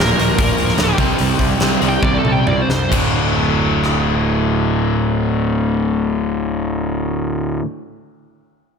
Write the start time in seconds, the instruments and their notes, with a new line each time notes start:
Already playing: overdriven electric guitar A#2 F3 A#3, lead electric guitar A#4
0.00 picked electric bass D1, snare
0.18 picked electric bass D1, overdriven electric guitar A#2 F3 A#3, open hi-hat
0.37 picked electric bass D1, overdriven electric guitar A#2 F3 A#3, kick, open hi-hat
0.58 picked electric bass D1, open hi-hat
0.69 snare
0.78 picked electric bass D1, snare, open hi-hat
0.97 picked electric bass C2, overdriven electric guitar C3 G3 C4, kick, open hi-hat
1.19 picked electric bass C2, open hi-hat
1.39 picked electric bass C2, kick, open hi-hat
1.58 picked electric bass C2, overdriven electric guitar C3 G3, snare, open hi-hat
1.62 overdriven electric guitar C4
1.81 picked electric bass C2, overdriven electric guitar C3 G3 C4, open hi-hat
1.89 lead electric guitar G5
2.03 picked electric bass C2, lead electric guitar D5, kick, high tom
2.18 lead electric guitar A4
2.25 picked electric bass C2, mid tom
2.32 lead electric guitar G5
2.47 picked electric bass C2, lead electric guitar D5, mid tom
2.62 lead electric guitar C5
2.69 picked electric bass C2, snare
2.90 picked electric bass D1, overdriven electric guitar D2 A2 D3, kick, crash
3.84 cross-stick